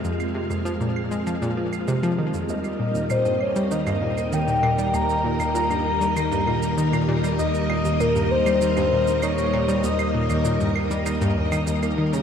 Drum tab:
SH |xx-xxx-xxx-xxx-x|xx-xxx-xxx-xxx-x|xx-xxx-xxx-xxx-x|xx-xxx-xxx-xxx-x|
CL |-x-x--x-x--x-x--|-x--x-x--x-x--x-|x--x-x--x-x--x-x|--x-x--x-x--x-x-|

SH |xx-xxx-xxx-xxx-x|
CL |-x-x--x-x--x-x--|